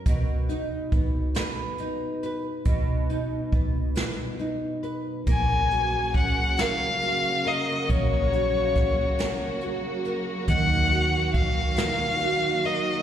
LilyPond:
<<
  \new Staff \with { instrumentName = "Violin" } { \time 6/8 \key fis \major \tempo 4. = 46 r2. | r2. | gis''4 fis''8 eis''4 dis''8 | cis''2 r4 |
fis''4 eis''4. dis''8 | }
  \new Staff \with { instrumentName = "Nylon-string guitar" } { \time 6/8 \key fis \major b,8 dis'8 b8 b'8 dis'8 b'8 | b,8 dis'8 b8 b'8 dis'8 b'8 | ais8 fis'8 cis'8 ais'8 fis'8 ais'8 | ais8 fis'8 cis'8 ais'8 fis'8 ais'8 |
dis8 fis'8 dis'8 ais'8 fis'8 ais'8 | }
  \new Staff \with { instrumentName = "String section" } { \clef bass \time 6/8 \key fis \major << { r2. | r2. | <fis ais fis'>2.~ | <fis ais fis'>2.~ |
<fis ais fis'>2. | } \\ { r2. | r2. | cis2.~ | cis2. |
dis2. | } >> }
  \new Staff \with { instrumentName = "Fingered electric bass" } { \clef bass \time 6/8 \key fis \major r2. | r2. | ais,,2. | ais,,2. |
dis,2. | }
  \new DrumStaff \with { instrumentName = "Drums" } \drummode { \time 6/8 <hh bd>8 hh8 <hh bd>8 <hh sn>8 hh8 hh8 | <hh bd>8 hh8 <hh bd>8 <hh sn>8 hh8 hh8 | <hh bd>8 hh8 <hh bd>8 <hh sn>8 hh8 hh8 | <hh bd>8 hh8 <hh bd sn>8 <hh sn>8 hh8 hh8 |
<hh bd>8 hh8 <hh bd>8 <hh sn>8 hh8 hh8 | }
>>